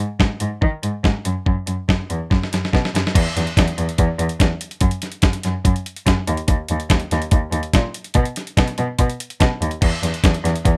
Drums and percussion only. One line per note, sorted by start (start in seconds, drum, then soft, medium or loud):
0.20 kick loud
0.20 snare medium
0.40 closed hi-hat medium
0.62 kick loud
0.83 closed hi-hat medium
1.04 kick medium
1.04 snare medium
1.25 closed hi-hat medium
1.46 kick medium
1.67 closed hi-hat medium
1.89 kick loud
1.89 snare loud
2.10 closed hi-hat medium
2.31 kick loud
2.31 snare medium
2.43 snare medium
2.53 snare medium
2.53 closed hi-hat medium
2.65 snare medium
2.73 kick medium
2.73 snare medium
2.85 snare medium
2.95 snare medium
2.95 closed hi-hat medium
3.07 snare medium
3.15 kick loud
3.15 closed hi-hat medium
3.15 crash loud
3.37 snare soft
3.37 closed hi-hat medium
3.47 closed hi-hat soft
3.57 kick loud
3.57 snare loud
3.57 closed hi-hat medium
3.68 closed hi-hat soft
3.78 closed hi-hat medium
3.89 closed hi-hat soft
3.98 kick loud
3.98 closed hi-hat loud
4.19 closed hi-hat medium
4.29 closed hi-hat soft
4.40 kick loud
4.40 snare loud
4.40 closed hi-hat medium
4.61 closed hi-hat medium
4.71 closed hi-hat medium
4.81 kick loud
4.81 closed hi-hat medium
4.91 closed hi-hat soft
5.02 snare soft
5.02 closed hi-hat medium
5.12 closed hi-hat soft
5.22 kick loud
5.22 snare loud
5.22 closed hi-hat medium
5.33 closed hi-hat medium
5.43 snare soft
5.43 closed hi-hat medium
5.65 kick loud
5.65 closed hi-hat medium
5.76 closed hi-hat soft
5.86 closed hi-hat medium
5.96 closed hi-hat soft
6.07 kick medium
6.07 snare loud
6.07 closed hi-hat loud
6.27 closed hi-hat medium
6.37 closed hi-hat soft
6.48 kick loud
6.48 closed hi-hat loud
6.68 closed hi-hat medium
6.80 closed hi-hat soft
6.90 kick loud
6.90 snare loud
6.90 closed hi-hat loud
7.00 closed hi-hat soft
7.11 snare soft
7.11 closed hi-hat medium
7.22 closed hi-hat soft
7.31 kick loud
7.31 closed hi-hat loud
7.52 closed hi-hat medium
7.63 closed hi-hat soft
7.74 kick loud
7.74 snare loud
7.74 closed hi-hat medium
7.94 closed hi-hat medium
8.04 closed hi-hat soft
8.14 kick loud
8.14 closed hi-hat medium
8.25 closed hi-hat soft
8.36 snare soft
8.36 closed hi-hat medium
8.47 closed hi-hat soft
8.57 kick loud
8.57 snare loud
8.57 closed hi-hat loud
8.68 closed hi-hat soft
8.78 closed hi-hat medium
8.99 kick loud
8.99 closed hi-hat loud
9.10 closed hi-hat soft
9.20 closed hi-hat medium
9.30 closed hi-hat soft
9.40 kick loud
9.40 snare loud
9.40 closed hi-hat medium
9.62 closed hi-hat medium
9.71 closed hi-hat soft
9.82 kick loud
9.82 crash loud
10.03 snare soft
10.03 closed hi-hat medium
10.14 closed hi-hat soft
10.24 kick loud
10.24 snare loud
10.24 closed hi-hat loud
10.34 closed hi-hat soft
10.45 snare soft
10.45 closed hi-hat medium
10.56 closed hi-hat soft
10.65 kick loud
10.65 closed hi-hat medium